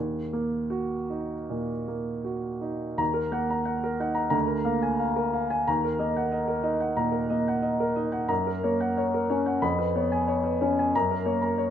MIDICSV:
0, 0, Header, 1, 2, 480
1, 0, Start_track
1, 0, Key_signature, -6, "minor"
1, 0, Tempo, 764331
1, 1881, Time_signature, 4, 2, 24, 8
1, 1882, Tempo, 688073
1, 2362, Tempo, 660066
1, 7162, Tempo, 640342
1, 8224, End_track
2, 0, Start_track
2, 0, Title_t, "Upright piano"
2, 0, Program_c, 0, 0
2, 0, Note_on_c, 0, 39, 32
2, 106, Control_c, 0, 64, 127
2, 208, Note_on_c, 0, 58, 28
2, 441, Note_on_c, 0, 66, 37
2, 598, Note_off_c, 0, 58, 0
2, 691, Note_on_c, 0, 63, 26
2, 832, Note_off_c, 0, 66, 0
2, 907, Note_off_c, 0, 39, 0
2, 940, Note_on_c, 0, 46, 26
2, 1074, Note_off_c, 0, 63, 0
2, 1180, Note_on_c, 0, 58, 26
2, 1316, Note_off_c, 0, 46, 0
2, 1409, Note_on_c, 0, 66, 27
2, 1555, Note_off_c, 0, 58, 0
2, 1641, Note_on_c, 0, 63, 26
2, 1792, Note_off_c, 0, 66, 0
2, 1870, Note_on_c, 0, 39, 36
2, 1871, Note_on_c, 0, 82, 46
2, 1877, Note_off_c, 0, 63, 0
2, 1894, Control_c, 0, 64, 0
2, 1980, Note_on_c, 0, 70, 33
2, 2011, Control_c, 0, 64, 127
2, 2070, Note_off_c, 0, 82, 0
2, 2103, Note_on_c, 0, 58, 31
2, 2107, Note_on_c, 0, 78, 34
2, 2184, Note_off_c, 0, 70, 0
2, 2236, Note_on_c, 0, 82, 33
2, 2306, Note_off_c, 0, 78, 0
2, 2340, Note_on_c, 0, 78, 36
2, 2430, Note_off_c, 0, 82, 0
2, 2472, Note_on_c, 0, 70, 34
2, 2496, Note_off_c, 0, 58, 0
2, 2544, Note_off_c, 0, 78, 0
2, 2590, Note_on_c, 0, 63, 33
2, 2594, Note_on_c, 0, 78, 35
2, 2669, Note_off_c, 0, 70, 0
2, 2697, Note_on_c, 0, 82, 35
2, 2789, Note_off_c, 0, 78, 0
2, 2799, Note_off_c, 0, 82, 0
2, 2805, Note_off_c, 0, 39, 0
2, 2810, Note_on_c, 0, 82, 47
2, 2814, Note_on_c, 0, 38, 38
2, 2834, Note_off_c, 0, 63, 0
2, 2852, Control_c, 0, 64, 0
2, 2933, Note_on_c, 0, 70, 31
2, 2981, Control_c, 0, 64, 127
2, 3016, Note_off_c, 0, 82, 0
2, 3062, Note_on_c, 0, 58, 31
2, 3062, Note_on_c, 0, 77, 34
2, 3140, Note_off_c, 0, 70, 0
2, 3191, Note_on_c, 0, 80, 35
2, 3267, Note_off_c, 0, 77, 0
2, 3314, Note_on_c, 0, 77, 34
2, 3393, Note_off_c, 0, 80, 0
2, 3437, Note_on_c, 0, 70, 32
2, 3464, Note_off_c, 0, 58, 0
2, 3516, Note_off_c, 0, 77, 0
2, 3562, Note_on_c, 0, 77, 34
2, 3637, Note_off_c, 0, 70, 0
2, 3685, Note_on_c, 0, 80, 37
2, 3759, Note_off_c, 0, 77, 0
2, 3769, Note_off_c, 0, 38, 0
2, 3808, Note_off_c, 0, 80, 0
2, 3809, Note_on_c, 0, 82, 47
2, 3813, Note_on_c, 0, 39, 42
2, 3821, Control_c, 0, 64, 0
2, 3932, Control_c, 0, 64, 127
2, 3934, Note_on_c, 0, 70, 33
2, 4000, Note_off_c, 0, 82, 0
2, 4038, Note_on_c, 0, 75, 34
2, 4042, Note_on_c, 0, 58, 31
2, 4120, Note_off_c, 0, 70, 0
2, 4166, Note_on_c, 0, 78, 34
2, 4231, Note_off_c, 0, 75, 0
2, 4277, Note_on_c, 0, 75, 36
2, 4353, Note_off_c, 0, 78, 0
2, 4393, Note_on_c, 0, 70, 33
2, 4421, Note_off_c, 0, 58, 0
2, 4468, Note_off_c, 0, 75, 0
2, 4505, Note_on_c, 0, 75, 33
2, 4506, Note_on_c, 0, 63, 32
2, 4586, Note_off_c, 0, 70, 0
2, 4630, Note_on_c, 0, 78, 32
2, 4701, Note_off_c, 0, 75, 0
2, 4729, Note_off_c, 0, 39, 0
2, 4749, Note_on_c, 0, 46, 31
2, 4749, Note_on_c, 0, 82, 38
2, 4824, Note_off_c, 0, 78, 0
2, 4858, Note_on_c, 0, 70, 32
2, 4893, Note_off_c, 0, 63, 0
2, 4943, Note_off_c, 0, 82, 0
2, 4989, Note_on_c, 0, 75, 37
2, 4994, Note_on_c, 0, 58, 31
2, 5058, Note_off_c, 0, 70, 0
2, 5121, Note_on_c, 0, 78, 36
2, 5135, Note_off_c, 0, 46, 0
2, 5183, Note_off_c, 0, 75, 0
2, 5226, Note_on_c, 0, 75, 33
2, 5309, Note_off_c, 0, 78, 0
2, 5356, Note_on_c, 0, 70, 34
2, 5378, Note_off_c, 0, 58, 0
2, 5422, Note_off_c, 0, 75, 0
2, 5470, Note_on_c, 0, 75, 34
2, 5474, Note_on_c, 0, 63, 34
2, 5546, Note_off_c, 0, 70, 0
2, 5587, Note_on_c, 0, 78, 38
2, 5663, Note_off_c, 0, 75, 0
2, 5707, Note_on_c, 0, 82, 47
2, 5708, Note_on_c, 0, 42, 39
2, 5710, Note_off_c, 0, 78, 0
2, 5714, Note_off_c, 0, 63, 0
2, 5727, Control_c, 0, 64, 0
2, 5841, Note_on_c, 0, 70, 36
2, 5844, Control_c, 0, 64, 127
2, 5903, Note_off_c, 0, 82, 0
2, 5961, Note_on_c, 0, 73, 36
2, 5966, Note_on_c, 0, 58, 33
2, 6030, Note_off_c, 0, 70, 0
2, 6085, Note_on_c, 0, 78, 38
2, 6151, Note_off_c, 0, 73, 0
2, 6208, Note_on_c, 0, 73, 37
2, 6274, Note_off_c, 0, 78, 0
2, 6330, Note_on_c, 0, 70, 35
2, 6348, Note_off_c, 0, 58, 0
2, 6396, Note_off_c, 0, 73, 0
2, 6443, Note_on_c, 0, 73, 36
2, 6447, Note_on_c, 0, 61, 32
2, 6517, Note_off_c, 0, 70, 0
2, 6563, Note_on_c, 0, 78, 33
2, 6633, Note_off_c, 0, 73, 0
2, 6646, Note_off_c, 0, 42, 0
2, 6678, Note_on_c, 0, 41, 43
2, 6678, Note_on_c, 0, 83, 49
2, 6680, Note_off_c, 0, 78, 0
2, 6682, Note_off_c, 0, 61, 0
2, 6689, Control_c, 0, 64, 0
2, 6799, Note_on_c, 0, 71, 35
2, 6801, Control_c, 0, 64, 127
2, 6869, Note_off_c, 0, 83, 0
2, 6921, Note_on_c, 0, 59, 35
2, 6923, Note_on_c, 0, 73, 35
2, 6990, Note_off_c, 0, 71, 0
2, 7040, Note_on_c, 0, 80, 37
2, 7113, Note_off_c, 0, 73, 0
2, 7156, Note_on_c, 0, 73, 36
2, 7235, Note_off_c, 0, 80, 0
2, 7275, Note_on_c, 0, 71, 34
2, 7310, Note_off_c, 0, 59, 0
2, 7356, Note_off_c, 0, 73, 0
2, 7406, Note_on_c, 0, 73, 37
2, 7410, Note_on_c, 0, 61, 33
2, 7476, Note_off_c, 0, 71, 0
2, 7541, Note_on_c, 0, 80, 36
2, 7601, Note_off_c, 0, 73, 0
2, 7620, Note_off_c, 0, 41, 0
2, 7652, Note_off_c, 0, 61, 0
2, 7656, Note_off_c, 0, 80, 0
2, 7663, Control_c, 0, 64, 0
2, 7663, Note_on_c, 0, 82, 51
2, 7664, Note_on_c, 0, 42, 39
2, 7781, Note_on_c, 0, 70, 36
2, 7796, Control_c, 0, 64, 127
2, 7847, Note_off_c, 0, 82, 0
2, 7889, Note_on_c, 0, 73, 37
2, 7890, Note_on_c, 0, 58, 34
2, 7964, Note_off_c, 0, 70, 0
2, 8011, Note_on_c, 0, 82, 36
2, 8076, Note_off_c, 0, 73, 0
2, 8132, Note_on_c, 0, 73, 40
2, 8195, Note_off_c, 0, 82, 0
2, 8224, Note_off_c, 0, 42, 0
2, 8224, Note_off_c, 0, 58, 0
2, 8224, Note_off_c, 0, 73, 0
2, 8224, End_track
0, 0, End_of_file